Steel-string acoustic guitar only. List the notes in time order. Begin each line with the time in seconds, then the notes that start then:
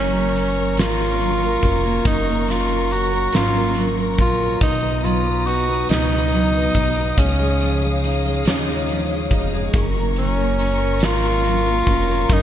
Already playing: F#2 F#3 A#3 C#4
0.14 A#3
0.35 C#4
0.56 A#3
0.77 C#4
0.98 A#3
1.20 F#3
1.41 A#3
1.61 C#4
1.83 A#3
2.05 F#2 C#4
2.27 A#3
2.47 F#3
2.68 A#3
2.89 C#4
3.11 A#3
3.33 F#2 C#4
3.55 A#3
3.75 F#3
3.97 A#3
4.19 C#4
4.40 A#3
4.61 B2 D#4
4.82 B3
5.04 F#3
5.25 B3
5.46 D#4
5.68 B3
5.90 B2 D#4
6.12 B3
6.32 F#3
6.54 B3
6.76 D#4
6.97 B3
7.17 C#3 D#4
7.39 G#3
7.62 F3
7.82 G#3
8.04 D#4
8.25 G#3
8.46 C#3 D#4
8.68 G#3
8.89 F3
9.10 G#3
9.32 D#4
9.54 G#3
9.74 F#2 C#4
9.97 A#3
10.18 F#3
10.38 A#3
10.60 C#4
10.80 A#3
11.02 C#4
11.23 A#3
11.45 F#3
11.66 A#3
11.87 C#4
12.09 A#3
12.30 F#2 C#4